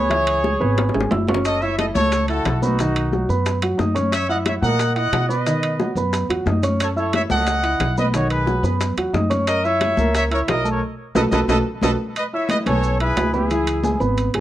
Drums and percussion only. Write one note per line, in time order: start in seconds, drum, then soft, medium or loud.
0.11 high bongo medium
0.11 high conga soft
0.11 high timbale medium
0.27 high conga soft
0.27 high timbale medium
0.44 high bongo medium
0.44 high conga medium
0.61 high bongo soft
0.61 high conga soft
0.77 high bongo loud
0.77 high conga soft
0.77 high timbale medium
0.89 high bongo medium
0.94 high conga soft
0.94 high timbale medium
1.01 high bongo loud
1.11 low bongo medium
1.11 high conga medium
1.11 low timbale medium
1.27 high conga medium
1.27 low timbale medium
1.34 low bongo medium
1.45 high bongo medium
1.45 high conga soft
1.45 high timbale medium
1.45 maracas medium
1.61 high conga soft
1.61 maracas soft
1.78 high bongo medium
1.78 high conga medium
1.78 high timbale medium
1.78 maracas soft
1.95 high conga loud
1.95 maracas medium
2.12 high bongo medium
2.12 high conga soft
2.12 high timbale medium
2.12 maracas medium
2.28 high conga soft
2.28 high timbale medium
2.28 maracas soft
2.45 high bongo medium
2.45 low bongo medium
2.45 high conga soft
2.45 high timbale medium
2.45 maracas soft
2.62 high conga medium
2.62 maracas medium
2.79 high bongo medium
2.79 high conga soft
2.79 high timbale medium
2.79 maracas medium
2.95 high conga soft
2.95 high timbale medium
2.95 maracas soft
3.12 high bongo medium
3.12 high conga medium
3.12 maracas soft
3.30 high bongo soft
3.30 high conga soft
3.30 maracas medium
3.46 high bongo medium
3.46 high conga soft
3.46 high timbale medium
3.46 maracas medium
3.62 high bongo soft
3.62 high conga soft
3.62 high timbale loud
3.62 maracas soft
3.79 high bongo medium
3.79 low bongo medium
3.79 high conga medium
3.79 maracas soft
3.96 high bongo soft
3.96 high conga medium
3.96 high timbale medium
3.96 maracas medium
4.12 high bongo medium
4.12 high conga soft
4.12 high timbale medium
4.12 maracas medium
4.30 high conga soft
4.30 maracas soft
4.46 high bongo medium
4.46 high conga medium
4.46 high timbale loud
4.46 maracas soft
4.62 high conga loud
4.62 maracas medium
4.79 high bongo medium
4.79 high conga soft
4.79 high timbale medium
4.79 maracas medium
4.96 high conga soft
4.96 high timbale medium
4.96 maracas soft
5.13 high bongo medium
5.13 low bongo medium
5.13 high conga soft
5.13 high timbale medium
5.13 low timbale medium
5.13 maracas soft
5.30 maracas medium
5.46 high bongo medium
5.46 high conga soft
5.46 high timbale medium
5.46 maracas medium
5.63 high conga soft
5.63 high timbale medium
5.63 maracas soft
5.80 high bongo medium
5.80 high conga medium
5.80 maracas soft
5.96 high bongo soft
5.96 high conga soft
5.96 maracas medium
6.13 high bongo medium
6.13 high conga soft
6.13 high timbale medium
6.13 maracas medium
6.30 high bongo soft
6.30 high conga soft
6.30 high timbale medium
6.30 maracas soft
6.46 high bongo medium
6.46 low bongo medium
6.46 high conga medium
6.46 maracas soft
6.63 high bongo soft
6.63 high conga medium
6.63 high timbale medium
6.63 maracas medium
6.79 high bongo medium
6.79 high conga soft
6.79 high timbale loud
6.79 maracas medium
6.96 high conga soft
6.96 maracas soft
7.13 high bongo medium
7.13 high conga medium
7.13 high timbale medium
7.13 maracas soft
7.30 high conga loud
7.30 maracas medium
7.47 high bongo medium
7.47 high conga soft
7.47 high timbale medium
7.47 maracas medium
7.63 high conga soft
7.63 high timbale medium
7.63 maracas soft
7.80 high bongo medium
7.80 low bongo medium
7.80 high conga soft
7.80 high timbale medium
7.80 maracas soft
7.97 high conga medium
7.97 maracas medium
8.14 high bongo medium
8.14 high conga soft
8.14 high timbale medium
8.14 maracas medium
8.30 high conga soft
8.30 high timbale medium
8.30 maracas soft
8.47 high bongo medium
8.47 high conga medium
8.47 maracas soft
8.64 high bongo soft
8.64 high conga soft
8.64 maracas medium
8.81 high bongo medium
8.81 high conga soft
8.81 high timbale medium
8.81 maracas medium
8.97 high bongo soft
8.97 high conga soft
8.97 high timbale medium
8.97 maracas soft
9.14 high bongo medium
9.14 low bongo medium
9.14 high conga medium
9.14 maracas soft
9.31 high bongo soft
9.31 high conga medium
9.31 high timbale medium
9.31 maracas medium
9.47 high bongo medium
9.47 high conga soft
9.47 high timbale medium
9.47 maracas medium
9.65 high conga soft
9.65 maracas soft
9.81 high bongo medium
9.81 high conga medium
9.81 high timbale medium
9.81 maracas soft
9.97 high conga medium
9.97 maracas medium
10.14 high bongo medium
10.14 high conga soft
10.14 high timbale medium
10.14 maracas medium
10.31 high conga soft
10.31 high timbale medium
10.31 maracas soft
10.48 high bongo medium
10.48 low bongo medium
10.48 high conga soft
10.48 high timbale medium
10.48 low timbale medium
10.48 maracas soft
10.65 maracas medium
11.15 high bongo medium
11.15 high conga loud
11.15 high timbale loud
11.15 maracas loud
11.31 high bongo medium
11.31 high conga loud
11.31 high timbale loud
11.31 maracas medium
11.48 high bongo medium
11.48 high conga loud
11.48 high timbale loud
11.48 maracas medium
11.81 high bongo medium
11.81 high conga loud
11.81 high timbale medium
11.81 maracas loud
12.15 high conga soft
12.15 high timbale medium
12.15 maracas medium
12.33 high conga soft
12.49 high conga loud
12.49 high timbale medium
12.49 low timbale medium
12.49 maracas medium
12.66 high conga loud
12.66 high timbale medium
12.66 maracas soft
12.83 high conga soft
12.83 maracas medium
13.00 high conga soft
13.00 high timbale medium
13.17 high conga medium
13.17 high timbale medium
13.17 low timbale medium
13.17 maracas medium
13.33 high conga medium
13.33 maracas soft
13.50 high conga soft
13.50 high timbale medium
13.50 maracas medium
13.67 high conga soft
13.67 high timbale medium
13.67 maracas medium
13.83 high conga medium
13.83 low timbale medium
13.83 maracas medium
14.00 high conga soft
14.00 maracas soft
14.17 high conga soft
14.17 high timbale medium
14.17 maracas medium
14.33 high conga soft
14.33 high timbale medium